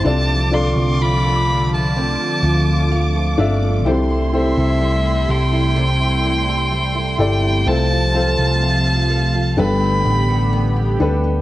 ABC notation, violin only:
X:1
M:4/4
L:1/16
Q:1/4=63
K:Ddor
V:1 name="Violin"
a2 c'2 b3 a6- a z2 | z2 e4 g8 g2 | a8 b6 z2 |]